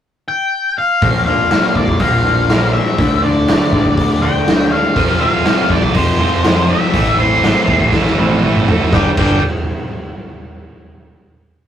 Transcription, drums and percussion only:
1.02 kick medium
1.02 open hi-hat medium
1.51 snare loud
1.51 open hi-hat medium
1.75 kick medium
1.88 kick medium
1.99 kick medium
1.99 open hi-hat medium
2.50 snare loud
2.50 open hi-hat medium
2.98 kick loud
2.98 open hi-hat medium
3.48 snare loud
3.48 open hi-hat medium
3.73 kick medium
3.85 kick medium
3.97 kick medium
3.97 open hi-hat soft
4.47 snare loud
4.47 open hi-hat medium
4.96 kick loud
4.96 open hi-hat soft
5.45 snare loud
5.45 open hi-hat soft
5.70 kick medium
5.82 kick medium
5.95 kick loud
5.95 open hi-hat medium
6.44 snare loud
6.44 open hi-hat medium
6.94 kick loud
6.94 open hi-hat medium
7.44 snare medium
7.44 open hi-hat soft
7.68 kick medium
7.80 kick medium
7.92 kick medium
7.92 snare medium
8.05 snare soft
8.17 high tom medium
8.29 high tom medium
8.43 mid tom medium
8.56 mid tom medium
8.68 floor tom medium
8.81 floor tom medium
8.92 kick loud
8.92 snare medium
9.17 kick loud
9.17 crash medium

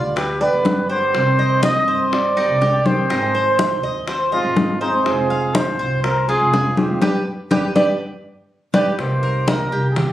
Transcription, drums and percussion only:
0.17 high bongo medium
0.17 high conga soft
0.41 high bongo soft
0.41 high conga soft
0.65 high bongo soft
0.65 low bongo medium
0.65 high conga medium
0.90 high bongo soft
1.14 high bongo medium
1.14 high conga soft
1.39 high conga soft
1.63 high bongo medium
1.63 high conga medium
1.88 high bongo soft
1.88 high conga soft
2.12 high bongo medium
2.12 high conga soft
2.37 high bongo soft
2.37 high conga soft
2.61 high bongo soft
2.61 low bongo medium
2.61 high conga soft
2.86 high bongo soft
2.86 high conga medium
3.10 high bongo medium
3.10 high conga soft
3.34 high conga soft
3.59 high bongo medium
3.59 high conga medium
3.84 high bongo soft
4.08 high bongo medium
4.08 high conga soft
4.32 high bongo soft
4.32 high conga soft
4.56 high bongo soft
4.56 low bongo medium
4.56 high conga medium
4.81 high bongo soft
5.06 high bongo medium
5.06 high conga soft
5.30 high conga soft
5.55 high bongo medium
5.55 high conga loud
5.79 high bongo soft
5.79 high conga soft
6.04 high bongo medium
6.04 high conga soft
6.29 high bongo soft
6.29 high conga soft
6.53 high bongo soft
6.53 low bongo medium
6.53 high conga soft
6.77 high bongo soft
6.77 high conga medium
7.02 low bongo medium
7.02 high conga medium
7.51 low bongo loud
7.51 high conga medium
7.76 low bongo loud
7.76 high conga loud
8.74 low bongo medium
8.74 high conga loud
8.99 high bongo medium
8.99 high conga soft
9.23 high conga soft
9.48 high bongo medium
9.48 high conga medium
9.72 high bongo soft
9.72 high conga soft
9.96 high bongo medium
9.96 high conga soft
9.96 low conga medium

